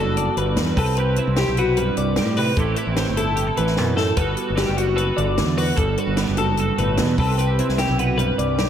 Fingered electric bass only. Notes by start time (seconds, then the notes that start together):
Already playing: F#1
0.37 G1
0.56 E2
0.77 C2
1.27 C2
1.48 B1
1.97 C2
2.18 A2
2.57 A1
2.87 A1
3.08 G1
3.59 A1
3.78 F#2
4.17 G1
4.50 G1
4.69 F#1
5.18 G1
5.39 E2
5.78 G1
6.07 G1
6.29 F#1
6.78 G1
6.99 E2
7.18 C2
7.69 C2
7.89 B1
8.38 C2
8.59 B1